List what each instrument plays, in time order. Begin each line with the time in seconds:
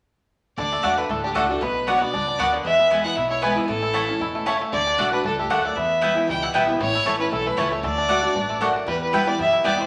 0.57 upright bass D2, steel-string acoustic guitar D3, five-string banjo D4, fiddle D5
0.72 five-string banjo A3
0.83 upright bass E2, steel-string acoustic guitar D3 A3 D4 F#4, mandolin A3 F#4 D5 F#5, five-string banjo D4
0.98 five-string banjo D3, fiddle B4
1.09 upright bass D2, steel-string acoustic guitar A2, five-string banjo A3, fiddle A4
1.24 five-string banjo D4, fiddle G4
1.35 upright bass C#2, steel-string acoustic guitar D3 A3 D4 F#4, mandolin A3 F#4 D5 F#5, five-string banjo A3, fiddle A4
1.49 five-string banjo D4, steel-string acoustic guitar D4 F#4, fiddle A4
1.61 upright bass B1, steel-string acoustic guitar B2, five-string banjo B3, fiddle B4
1.87 steel-string acoustic guitar F#3 B3 D4 F#4, mandolin B3 F#4 D5 F#5, five-string banjo B3
1.94 fiddle C#5
2.01 five-string banjo B3, steel-string acoustic guitar D4 F#4, fiddle D5
2.14 upright bass C#2, steel-string acoustic guitar G2, five-string banjo D4
2.28 five-string banjo D4
2.39 upright bass D2, steel-string acoustic guitar F#2, mandolin B3 F#4 D5 F#5, five-string banjo B3
2.54 five-string banjo D3
2.65 steel-string acoustic guitar E2, upright bass E2, five-string banjo G#3, fiddle E5
2.79 five-string banjo B3
2.90 steel-string acoustic guitar E3 G#3 B3 E4, five-string banjo G#3, mandolin B3 E4 B4 G#5
3.04 five-string banjo B3, steel-string acoustic guitar B3 E4, fiddle F#5
3.16 upright bass B1, steel-string acoustic guitar B2, five-string banjo E4, fiddle E5
3.30 five-string banjo E4, fiddle C#5
3.42 steel-string acoustic guitar E3 G#3 B3 E4, mandolin B3 E4 B4 G#5, five-string banjo B3, fiddle B4
3.55 five-string banjo E3, steel-string acoustic guitar B3 E4
3.68 upright bass A1, steel-string acoustic guitar A2, five-string banjo E3, fiddle A4
3.82 five-string banjo E4
3.93 steel-string acoustic guitar E3 A3 C#4 E4, mandolin A3 E4 C#5 A5, five-string banjo A3
4.08 five-string banjo C#4, steel-string acoustic guitar C#4 E4
4.19 upright bass E1, steel-string acoustic guitar B2, five-string banjo E4
4.35 five-string banjo A3
4.46 steel-string acoustic guitar C#3, mandolin A3 E4 C#5 A5, five-string banjo C#4
4.61 five-string banjo A3
4.72 upright bass D2, five-string banjo D3, steel-string acoustic guitar D3, fiddle D5
4.87 five-string banjo D4
4.98 upright bass B1, steel-string acoustic guitar D3 A3 D4 F#4, mandolin A3 F#4 D5 F#5, five-string banjo A3
5.12 five-string banjo D4, steel-string acoustic guitar D4 F#4, fiddle B4
5.24 upright bass C#2, steel-string acoustic guitar G2, five-string banjo D4, fiddle A4
5.39 five-string banjo A3, fiddle G4
5.50 upright bass D2, steel-string acoustic guitar F#2, mandolin A3 F#4 D5 F#5, five-string banjo D4, fiddle A4
5.64 five-string banjo A3, fiddle D5
5.76 steel-string acoustic guitar E2, upright bass E2, five-string banjo B3, fiddle E5
6.01 steel-string acoustic guitar E3 G3 B3 E4, mandolin B3 E4 B4 G5, five-string banjo E4
6.15 five-string banjo E3, steel-string acoustic guitar B3 E4
6.27 upright bass C#2, steel-string acoustic guitar B2, five-string banjo G3, fiddle G5
6.42 five-string banjo E4, fiddle F#5
6.53 upright bass B1, steel-string acoustic guitar E3 G3 B3 E4, five-string banjo G3, mandolin B3 E4 B4 G5, fiddle E5
6.67 five-string banjo B3, steel-string acoustic guitar B3 E4
6.80 upright bass A1, steel-string acoustic guitar A2, five-string banjo E3, fiddle C#5
6.95 five-string banjo E4
7.05 upright bass A1, steel-string acoustic guitar E3 A3 C#4 E4, mandolin A3 E4 C#5 A5, five-string banjo A3
7.19 five-string banjo C#4, steel-string acoustic guitar C#4 E4, fiddle B4
7.31 upright bass B1, steel-string acoustic guitar E2, five-string banjo E4, fiddle A4
7.46 five-string banjo A3, fiddle B4
7.57 upright bass C#2, steel-string acoustic guitar E3 A3 C#4 E4, mandolin A3 E4 C#5 A5, five-string banjo C#4
7.72 five-string banjo A3, fiddle C#5
7.83 upright bass D2, steel-string acoustic guitar D3, five-string banjo A3, fiddle D5
7.98 five-string banjo D4
8.08 steel-string acoustic guitar D3 A3 D4 F#4, mandolin A3 F#4 D5 F#5, five-string banjo A3
8.23 five-string banjo D4, steel-string acoustic guitar D4 F#4
8.34 upright bass A1, steel-string acoustic guitar G2, five-string banjo D4
8.50 five-string banjo A3
8.60 steel-string acoustic guitar F#2, mandolin A3 F#4 D5 F#5, five-string banjo D4
8.76 five-string banjo D4
8.86 upright bass E2, steel-string acoustic guitar E2, five-string banjo G3, fiddle B4
9.02 fiddle B4
9.12 steel-string acoustic guitar E3 G3 B3 E4, mandolin B3 E4 B4 G5, five-string banjo E4
9.26 five-string banjo G3, steel-string acoustic guitar B3 E4, fiddle D5
9.39 upright bass F#2, steel-string acoustic guitar B2, five-string banjo B3, fiddle E5
9.53 five-string banjo E4
9.63 upright bass E2, steel-string acoustic guitar E3 G3 B3 E4, mandolin B3 E4 B4 G5, five-string banjo G4, fiddle D5
9.78 five-string banjo G3, steel-string acoustic guitar B3 E4, fiddle C5